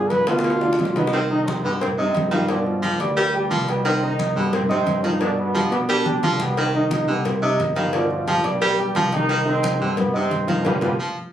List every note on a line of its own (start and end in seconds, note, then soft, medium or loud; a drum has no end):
0.00 0.22 G2 loud
0.00 0.21 D3 medium
0.00 0.22 D4 medium
0.00 0.22 F4 medium
0.00 0.12 G#4 loud
0.10 0.28 B4 loud
0.10 cowbell medium
0.10 high conga medium
0.27 0.75 D2 loud
0.27 0.56 B2 medium
0.27 0.56 B3 medium
0.27 1.01 F4 loud
0.27 0.56 B4 medium
0.27 cowbell medium
0.27 high bongo medium
0.27 high conga soft
0.39 high bongo loud
0.44 cowbell loud
0.44 high conga soft
0.50 low bongo medium
0.61 0.90 D3 medium
0.61 0.90 D4 medium
0.61 0.90 F4 medium
0.61 low bongo medium
0.61 high conga soft
0.73 low bongo medium
0.79 1.58 C2 medium
0.79 cowbell medium
0.79 high conga medium
0.85 low bongo medium
0.95 1.12 B2 medium
0.95 1.10 D#3 medium
0.95 1.11 B3 loud
0.95 1.11 D#4 medium
0.95 1.11 D#5 medium
0.95 cowbell medium
0.95 low bongo medium
0.95 high conga medium
1.07 low bongo medium
1.12 1.21 C3 medium
1.12 1.41 D#3 loud
1.12 1.20 C4 loud
1.12 cowbell loud
1.12 high conga soft
1.29 1.46 D#3 medium
1.29 1.58 D#3 medium
1.29 1.45 D#4 loud
1.29 1.58 D#4 loud
1.29 1.58 D#5 medium
1.29 high conga soft
1.46 1.64 C3 medium
1.46 1.63 C4 loud
1.46 cowbell medium
1.46 high conga medium
1.63 2.11 G2 loud
1.63 1.71 B2 medium
1.63 1.82 D3 medium
1.63 1.92 G3 medium
1.63 1.71 B3 loud
1.63 1.92 G4 medium
1.63 1.92 G5 medium
1.63 high conga soft
1.80 1.89 C3 medium
1.80 1.88 C4 loud
1.80 cowbell loud
1.80 high conga soft
1.80 low conga medium
1.97 2.29 C3 medium
1.97 2.16 C3 medium
1.97 2.29 C4 loud
1.97 2.26 D#4 medium
1.97 2.26 D#5 medium
1.97 2.26 D#6 medium
1.97 high conga soft
2.14 2.94 G2 loud
2.14 cowbell medium
2.14 high conga medium
2.31 2.49 G2 medium
2.31 2.59 D#3 medium
2.31 2.46 F3 medium
2.31 2.49 G3 loud
2.31 2.46 F4 medium
2.31 2.46 F5 medium
2.31 cowbell medium
2.31 high conga medium
2.48 2.77 B2 medium
2.48 2.56 F3 medium
2.48 2.77 D4 medium
2.48 2.57 F4 medium
2.48 2.77 D5 medium
2.48 cowbell loud
2.48 high conga soft
2.65 2.97 F3 medium
2.65 2.98 F4 medium
2.65 high conga soft
2.82 3.00 F3 medium
2.82 2.97 G3 medium
2.82 2.97 G4 medium
2.82 2.97 G5 medium
2.82 cowbell medium
2.82 high conga medium
2.99 3.47 D2 loud
2.99 3.16 G2 medium
2.99 3.15 G3 medium
2.99 3.28 D4 medium
2.99 3.28 D5 medium
2.99 3.28 D6 medium
2.99 cowbell medium
2.99 high conga soft
3.17 3.65 G2 medium
3.17 3.35 G3 loud
3.17 3.64 G3 loud
3.17 cowbell loud
3.17 high conga soft
3.34 3.62 G3 medium
3.34 3.62 G4 medium
3.34 3.62 G5 medium
3.34 high conga soft
3.50 4.30 C2 medium
3.50 3.69 F3 medium
3.50 cowbell medium
3.50 high conga medium
3.68 3.84 B2 medium
3.68 3.96 G3 medium
3.68 3.84 B3 loud
3.68 3.96 G4 medium
3.68 3.97 G5 medium
3.68 cowbell medium
3.85 4.03 C3 medium
3.85 4.13 D#3 loud
3.85 4.02 C4 loud
3.85 cowbell loud
3.85 high conga soft
4.02 4.30 D#3 medium
4.02 4.34 D#3 medium
4.02 4.30 D#4 medium
4.02 4.34 D#4 loud
4.02 4.31 D#5 medium
4.02 high conga soft
4.19 cowbell medium
4.19 high conga loud
4.36 4.83 G2 loud
4.36 4.45 B2 medium
4.36 4.54 D3 medium
4.36 4.64 G3 medium
4.36 4.44 B3 loud
4.36 4.64 G4 medium
4.36 4.64 G5 medium
4.36 high conga soft
4.53 4.62 C3 medium
4.53 4.61 C4 loud
4.53 cowbell loud
4.53 high conga soft
4.53 low conga medium
4.69 4.88 C3 medium
4.69 5.02 C3 medium
4.69 5.02 C4 loud
4.69 4.97 D#4 medium
4.69 4.98 D#5 medium
4.69 4.97 D#6 medium
4.69 high conga soft
4.69 low conga medium
4.86 5.66 G2 loud
4.86 cowbell medium
4.86 high conga medium
5.03 5.32 D#3 medium
5.03 5.22 D#3 medium
5.03 5.18 F3 medium
5.03 5.21 D#4 loud
5.03 5.18 F4 medium
5.03 5.18 F5 medium
5.03 cowbell medium
5.20 5.49 B2 medium
5.20 5.29 D3 medium
5.20 5.49 D4 medium
5.20 5.29 D4 loud
5.20 5.49 D5 medium
5.20 cowbell loud
5.20 high conga soft
5.38 5.70 B2 medium
5.38 5.70 B3 loud
5.38 high conga soft
5.54 5.72 F3 medium
5.54 5.68 G3 medium
5.54 5.69 G4 medium
5.54 5.69 G5 medium
5.54 cowbell medium
5.54 high conga medium
5.71 6.19 B2 loud
5.71 5.80 B2 medium
5.71 5.80 B3 medium
5.71 6.00 D4 medium
5.71 6.00 D5 medium
5.71 6.00 D6 medium
5.71 cowbell medium
5.71 high conga soft
5.88 6.37 D3 medium
5.88 6.07 G3 loud
5.88 6.36 D4 loud
5.88 cowbell loud
5.88 high conga soft
6.05 6.33 G3 medium
6.05 6.33 G4 medium
6.05 6.34 G5 medium
6.05 high conga loud
6.23 7.02 C2 loud
6.23 6.41 F3 medium
6.23 cowbell medium
6.23 high conga loud
6.39 6.57 B2 medium
6.39 6.68 G3 medium
6.39 6.57 B3 loud
6.39 6.68 G4 medium
6.39 6.68 G5 medium
6.39 cowbell medium
6.39 low conga medium
6.57 6.74 C3 medium
6.57 6.85 D#3 medium
6.57 6.74 C4 loud
6.57 cowbell loud
6.57 high conga soft
6.74 7.06 D#3 medium
6.74 7.02 D#3 medium
6.74 7.06 D#4 loud
6.74 7.03 D#4 medium
6.74 7.02 D#5 medium
6.74 high conga soft
6.91 cowbell medium
6.91 high conga loud
7.08 7.55 C2 medium
7.08 7.25 B2 medium
7.08 7.26 D3 medium
7.08 7.36 G3 medium
7.08 7.25 B3 medium
7.08 7.36 G4 medium
7.08 7.36 G5 medium
7.08 high conga soft
7.25 7.42 C3 medium
7.25 7.43 C4 medium
7.25 cowbell loud
7.25 high conga soft
7.25 low conga medium
7.42 7.60 C3 medium
7.42 7.70 D#4 medium
7.42 7.71 D#5 medium
7.42 7.71 D#6 medium
7.42 high conga soft
7.58 8.38 G1 medium
7.58 cowbell medium
7.58 high conga medium
7.76 7.93 G2 medium
7.76 8.04 D#3 medium
7.76 7.90 F3 medium
7.76 7.92 G3 medium
7.76 7.90 F4 medium
7.76 7.91 F5 medium
7.76 cowbell medium
7.93 8.21 B2 medium
7.93 8.08 F3 loud
7.93 8.21 D4 medium
7.93 8.09 F4 medium
7.93 8.21 D5 medium
7.93 cowbell loud
7.93 high conga soft
8.09 8.41 F3 medium
8.09 8.42 F4 medium
8.09 high conga soft
8.27 8.45 F3 medium
8.27 8.41 G3 medium
8.27 8.41 G4 medium
8.27 8.41 G5 medium
8.27 cowbell medium
8.27 high conga medium
8.44 8.92 B1 loud
8.44 8.60 G2 medium
8.44 8.59 G3 medium
8.44 8.72 D4 medium
8.44 8.72 D5 medium
8.44 8.72 D6 medium
8.44 cowbell medium
8.44 high conga soft
8.60 9.09 G2 medium
8.60 9.08 G3 loud
8.60 8.79 G3 loud
8.60 cowbell loud
8.60 high conga soft
8.79 9.06 G3 medium
8.79 9.07 G4 medium
8.79 9.07 G5 medium
8.79 high conga soft
8.95 9.74 C2 loud
8.95 9.14 F3 medium
8.95 cowbell medium
8.95 high conga medium
9.12 9.44 D#3 medium
9.12 9.40 G3 medium
9.12 9.44 D#4 loud
9.12 9.40 G4 medium
9.12 9.40 G5 medium
9.12 cowbell medium
9.12 high conga medium
9.29 9.57 D#3 medium
9.29 cowbell loud
9.29 high conga soft
9.45 9.78 C3 medium
9.45 9.74 D#3 medium
9.45 9.78 C4 loud
9.45 9.73 D#4 medium
9.45 9.74 D#5 medium
9.45 high conga soft
9.63 cowbell medium
9.63 high conga loud
9.80 10.27 G2 loud
9.80 9.97 C3 medium
9.80 9.99 D3 medium
9.80 10.08 G3 medium
9.80 9.97 C4 loud
9.80 10.08 G4 medium
9.80 10.08 G5 medium
9.80 high conga soft
9.97 10.14 B2 medium
9.97 10.14 B3 loud
9.97 cowbell loud
9.97 high conga soft
9.97 low conga medium
10.13 10.46 C3 medium
10.13 10.33 C3 medium
10.13 10.46 C4 loud
10.13 10.42 D#4 medium
10.13 10.42 D#5 medium
10.13 10.42 D#6 medium
10.13 high conga soft
10.31 10.63 G2 loud
10.31 cowbell medium
10.31 high conga medium
10.47 10.76 D#3 medium
10.47 10.62 F3 medium
10.47 10.64 F3 loud
10.47 10.62 F4 medium
10.47 10.66 F4 medium
10.47 10.62 F5 medium
10.47 cowbell medium
10.47 high conga medium
10.65 10.78 G1 loud
10.65 10.74 D3 loud
10.65 10.74 F3 loud
10.65 10.73 G3 loud
10.65 10.76 F4 loud
10.65 10.77 G4 loud
10.65 10.76 B4 loud
10.65 cowbell loud
10.65 low conga loud
10.81 10.95 G1 loud
10.81 10.91 D3 loud
10.81 10.90 F3 loud
10.81 10.90 G3 loud
10.81 10.93 F4 loud
10.81 10.93 G4 loud
10.81 10.93 B4 loud
10.81 cowbell loud
10.81 low conga loud
10.99 11.17 F3 medium